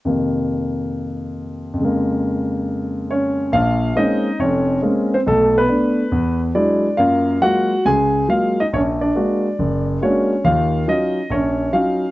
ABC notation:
X:1
M:4/4
L:1/8
Q:"Swing" 1/4=139
K:Bbm
V:1 name="Grand piano"
z8 | z6 [Dd]2 | [Ff]2 [Ee]2 [Dd]2 z [Cc] | [=A,=A] [=B,=B]4 z =d2 |
[Ff]2 [Gg]2 [Aa]2 f [Ee] | [^C^c] [=D=d]4 z [Cc]2 | [Ff]2 e2 [Dd]2 f2 |]
V:2 name="Grand piano" clef=bass
[F,,C,E,B,]8 | [F,,D,A,B,]8 | [B,,,B,,]2 [A,B,CD] z [F,,,F,,]2 [A,B,CD] z | =B,,,2 [=A,=B,=D] z =E,,2 [^F,^G,D=E] z |
[G,,B,]2 [G,A,B,F] z D,,2 [G,A,B,F] z | B,,,2 [A,B,=D^F] z ^F,,,2 [A,B,DF] z | [E,,E,]2 [G,DEF] z B,,,2 [G,DEF] z |]